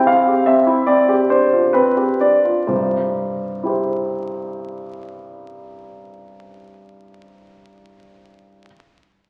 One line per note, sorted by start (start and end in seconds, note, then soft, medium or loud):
0.00 0.07 C4 soft
0.00 0.20 E4 soft
0.00 0.10 G4 soft
0.07 0.45 C4 soft
0.07 0.47 F5 medium
0.27 0.60 G4 soft
0.46 0.80 C4 soft
0.46 0.88 E5 medium
0.67 0.88 E4 soft
0.86 1.72 C4 soft
0.86 1.30 D5 medium
1.08 1.43 G4 soft
1.30 1.65 D4 soft
1.30 1.74 C5 medium
1.53 1.88 F4 soft
1.73 2.65 C4 soft
1.73 2.20 B4 medium
1.97 2.35 G4 soft
2.20 2.59 D4 soft
2.20 2.68 D5 soft
2.45 2.68 F4 soft
2.67 7.57 C2 soft
2.67 7.58 G2 soft
2.67 3.66 C5 soft
3.63 7.94 E4 soft
3.63 7.95 G4 soft
3.63 7.96 C5 soft